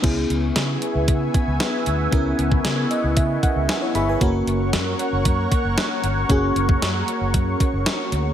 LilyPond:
<<
  \new Staff \with { instrumentName = "Analog synth pad" } { \time 4/4 \key cis \dorian \tempo 4 = 115 << { cis'''1~ | cis'''1~ | cis'''1~ | cis'''1 | } \\ { <b e'' gis''>1~ | <b e'' gis''>1 | <ais' cis'' fis''>1~ | <ais' cis'' fis''>1 | } >> }
  \new Staff \with { instrumentName = "FM electric piano" } { \time 4/4 \key cis \dorian << { r1 | r4. dis''8 e''8 fis''8 gis''16 <e' cis''>16 <gis' e'' b''>16 <b' gis''>16~ | <b' gis''>16 r2. r8. | r1 | } \\ { <b cis' e' gis'>1 | <b cis' e' ais'>2.~ <b cis' e' ais'>8 r8 | <ais cis' fis' ais'>1 | <ais cis' fis' gis'>1 | } >> }
  \new Staff \with { instrumentName = "Fingered electric bass" } { \clef bass \time 4/4 \key cis \dorian cis,8 cis,8 cis8 r16 cis,16 cis8 r16 cis,16 r8 d,8 | cis,8 cis,8 cis8 r16 cis,16 cis8 r16 cis,16 r8 g,,8 | fis,,8 fis,,8 fis,8 r16 fis,,16 fis,8 r16 fis,,16 r8 g,,8 | fis,,8 fis,,8 fis,8 r16 fis,,16 fis,8 r16 fis,,16 r8 d,8 | }
  \new DrumStaff \with { instrumentName = "Drums" } \drummode { \time 4/4 <cymc hh bd>8 hh8 <hh sn>8 hh8 <hh bd>8 <hh bd>8 <hh sn>8 hh8 | <hh bd>8 hh16 bd16 <hh sn>8 hh8 <hh bd>8 <hh bd>8 <hh sn>8 hh8 | <hh bd>8 hh8 <hh sn>8 hh8 <hh bd>8 <hh bd>8 <hh sn>8 hh8 | <hh bd>8 hh16 bd16 <hh sn>8 hh8 <hh bd>8 <hh bd>8 <hh sn>8 hh8 | }
>>